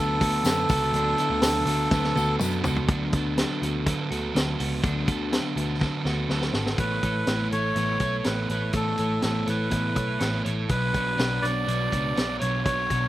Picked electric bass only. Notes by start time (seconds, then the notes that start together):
Already playing: D2
0.21 D2
0.44 F#2
0.70 C#2
0.93 D2
1.30 D2
1.42 D2
1.66 D2
1.91 D2
2.16 D2
2.41 F#2
2.66 C#2
2.89 D2
3.13 D2
3.62 D2
4.11 D2
4.35 D2
4.60 C#2
4.84 D2
5.08 D2
5.56 D2
6.05 D2
6.29 D2
6.53 G#1
6.78 A1
7.03 A1
7.28 A1
7.52 A1
7.76 A1
8.00 B1
8.26 A1
8.50 A1
8.74 A1
8.99 A1
9.23 A1
9.48 A1
9.72 A1
9.96 B1
10.21 A1
10.46 A1
10.69 B1
10.94 B1
11.19 B1
11.43 B1
11.68 B1
11.93 C#2
12.17 B1
12.42 B1
12.66 B1
12.91 B1